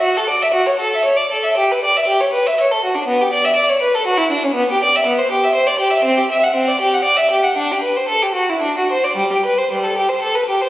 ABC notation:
X:1
M:3/4
L:1/16
Q:1/4=119
K:Glyd
V:1 name="Violin"
F A d e F c A e c d A e | G B d e G c B e c A F D | B, G d e d c B A F E D C | [K:G] B, G d e B, c G e c d G e |
C G e f C d G f d e G f | D G B c A G F E D F c d | G, G B c G, A G c A B G c |]